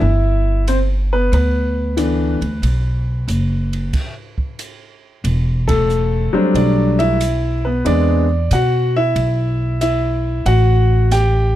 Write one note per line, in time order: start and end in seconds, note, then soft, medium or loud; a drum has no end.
0.00 1.28 G1 medium
0.00 0.64 E4 medium
0.00 0.63 E5 medium
0.68 0.79 C4 medium
0.68 0.78 C5 medium
0.68 hi-hat pedal medium
0.68 ride medium
1.13 1.32 B3 medium
1.13 1.32 B4 medium
1.32 2.38 D2 medium
1.32 1.96 B3 medium
1.32 4.56 B4 medium
1.32 ride medium
1.97 2.37 E3 medium
1.97 2.37 A3 soft
1.97 2.37 B3 soft
1.97 2.38 D4 medium
1.97 hi-hat pedal soft
1.97 ride medium
2.41 2.61 D2 medium
2.41 ride soft
2.62 3.24 B1 medium
2.62 ride medium
3.28 3.89 F#1 medium
3.28 hi-hat pedal medium
3.28 ride medium
3.73 ride soft
3.93 kick medium
3.93 crash medium
3.93 ride medium
4.38 kick soft
4.59 hi-hat pedal medium
4.59 ride medium
5.24 6.30 E1 medium
5.24 ride medium
5.68 6.30 A3 medium
5.68 6.35 A4 medium
5.68 kick medium
5.68 ride medium
5.90 hi-hat pedal medium
6.33 7.15 F#3 medium
6.33 7.16 G3 medium
6.33 7.16 A3 medium
6.33 6.54 C4 medium
6.33 6.56 D4 medium
6.33 6.56 C5 medium
6.33 muted upright bass stroke soft
6.54 7.81 B1 medium
6.54 6.97 D4 medium
6.54 7.01 D5 medium
6.54 ride medium
6.99 7.61 E4 medium
6.99 7.66 E5 loud
6.99 ride soft
7.21 hi-hat pedal medium
7.21 ride medium
7.65 7.84 B3 medium
7.65 7.84 B4 medium
7.85 8.47 E2 medium
7.85 8.25 G#3 medium
7.85 8.25 B3 medium
7.85 8.25 C4 medium
7.85 8.26 D4 medium
7.85 8.53 D5 medium
7.85 ride medium
8.51 9.12 B2 medium
8.51 8.94 F#4 medium
8.51 8.97 F#5 medium
8.51 hi-hat pedal medium
8.51 ride medium
8.96 9.79 E4 medium
8.96 9.80 E5 loud
9.15 10.42 B1 medium
9.15 ride medium
9.81 10.43 E4 medium
9.81 10.49 E5 medium
9.81 hi-hat pedal medium
9.81 ride medium
10.46 11.56 A1 medium
10.46 11.09 F#4 medium
10.46 11.08 F#5 medium
10.46 ride medium
11.11 11.56 G4 medium
11.11 11.56 G5 medium
11.11 snare soft
11.11 hi-hat pedal medium
11.11 ride medium